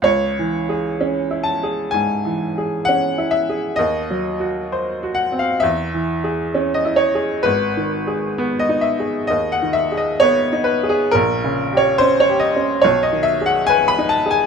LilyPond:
\new Staff \with { instrumentName = "Upright piano" } { \time 4/4 \key cis \minor \tempo 4 = 66 << { cis''4. a''8 gis''4 fis''8 e''8 | ees''4. ges''16 eis''16 e''4~ e''16 dis''16 cis''8 | b'4~ b'16 dis''16 e''8 dis''16 fis''16 e''16 dis''16 cis''8 b'16 gis'16 | bes'8. des''16 bis'16 des''16 dis''8 cis''16 dis''16 e''16 fis''16 gis''16 b''16 a''16 gis''16 | } \\ { \tuplet 3/2 { cis,8 e8 gis'8 cis'8 e'8 gis'8 gis,8 e8 gis'8 cis'8 e'8 gis'8 } | \tuplet 3/2 { ees,8 ges8 ges'8 c''8 ges'8 c'8 e,8 e8 gis'8 cis'8 e'8 gis'8 } | \tuplet 3/2 { gis,,8 dis8 gis'8 b8 dis'8 gis'8 dis,8 dis8 gis'8 b8 dis'8 gis'8 } | \tuplet 3/2 { bes,,8 des8 g'8 des'8 g'8 des'8 b,,8 dis8 gis'8 b'8 dis'8 gis'8 } | } >> }